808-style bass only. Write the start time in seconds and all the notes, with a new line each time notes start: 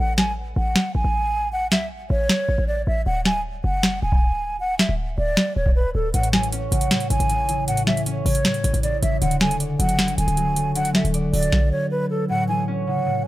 0.00 A1
0.56 A1
0.95 A1
1.04 A1
1.72 C#2
1.91 A1
2.10 A1
2.49 A1
2.58 A1
2.87 A1
3.06 D1
3.64 F#1
4.02 D1
4.89 D1
5.18 D1
5.56 D1
5.95 D1
6.14 A1
6.72 A1
7.10 A1
7.20 A1
7.87 C#2
8.06 A1
8.26 A1
8.64 A1
8.74 A1
9.03 A1
9.22 D1
9.79 F#1
10.18 D1
10.27 C#1
11.04 D1
11.33 D1